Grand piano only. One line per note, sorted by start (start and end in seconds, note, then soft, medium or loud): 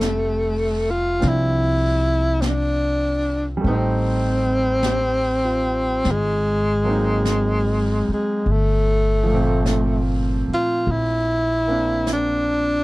0.00 3.55 G3 soft
0.00 3.59 A3 soft
0.00 1.19 C4 soft
0.00 3.65 E5 medium
1.20 3.63 F3 soft
1.20 3.62 C4 soft
1.20 3.62 D4 soft
3.57 6.01 G3 soft
3.57 6.03 A3 soft
3.64 6.05 C4 soft
3.68 6.07 D#4 medium
4.84 5.81 G4 soft
5.45 6.31 F4 soft
6.84 8.44 F#3 soft
6.84 8.44 A#3 soft
6.84 8.46 C4 soft
6.89 8.46 D#4 soft
9.24 12.84 F3 medium
9.24 12.84 A3 soft
9.31 12.84 A#2 soft
9.31 11.67 C4 medium
11.67 12.84 A#3 soft
11.67 12.84 C4 soft
11.67 12.84 D4 soft